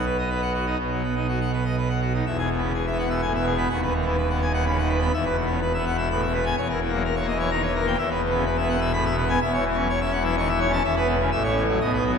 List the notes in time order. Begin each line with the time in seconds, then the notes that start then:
Already playing: B1 B2
0.06 B4
0.18 D#5
0.30 B4
0.42 F#5
0.54 F#4
0.66 D#4
0.79 B1 B2
0.91 F#3
1.03 B3
1.16 D#4
1.28 F#4
1.41 F#5
1.53 B4
1.65 D#5
1.77 B4
1.90 F#5
2.02 F#4
2.14 D#4
2.26 E1 E2 E5
2.38 B2 G#4
2.50 B2
2.58 B3
2.62 C#3
2.74 G#4
2.86 E5
2.91 B3
2.99 F#5
3.07 B2 E5
3.21 A2 G#5
3.35 B2 E5
3.46 G#4
3.55 B3 B5
3.70 D#1 D#2 F#5
3.82 D#3 B4
3.94 D#3
4.02 B3
4.06 E3
4.18 B4
4.30 F#5
4.34 B3
4.42 G#5
4.50 D#3
4.54 F#5
4.66 C#3 B5
4.78 D#3 F#5
4.89 B4
4.98 B3 B5
5.13 E1 E2 E5
5.25 B4
5.29 B2
5.37 B2
5.45 B3
5.50 C#3
5.62 B4
5.74 B3 E5
5.87 F#5
5.94 B2
5.98 E5
6.10 A2 B5
6.23 B2 E5
6.34 B4
6.42 B3 G#5
6.57 E1 E2 C#5
6.69 E3 A#4
6.81 E3
6.88 F#3 A#3
7.05 A#4
7.16 C#5
7.20 A#3
7.28 D#5
7.35 E3
7.40 C#5
7.50 D#3 A#5
7.62 C#5
7.67 E3
7.75 A#4
7.83 A#3
7.87 G5
7.98 E1 E2 E5
8.10 B4
8.15 B2
8.23 B2
8.30 B3
8.34 C#3
8.46 B4
8.57 B3 E5
8.69 F#5
8.77 B2 E5
8.93 A2 B5
9.05 E5
9.09 B2
9.17 B4
9.25 B3
9.29 G#5
9.42 E1 E2 E5
9.54 C#5
9.58 E3
9.66 E3
9.74 C#4
9.78 F#3
9.89 C#5
10.01 C#4 E5
10.12 F#5
10.21 E3 E5
10.37 D#3 C#6
10.48 E5
10.53 E3
10.60 C#5
10.69 C#4 A5
10.84 E1 E2 E5
10.96 B3 B4
11.08 B2
11.19 C#3
11.32 A1 A2 E5
11.44 C#5
11.48 C#4
11.56 E3
11.69 F#3
11.81 B1 B2 D#5
11.93 B4
11.97 B3
12.05 F#3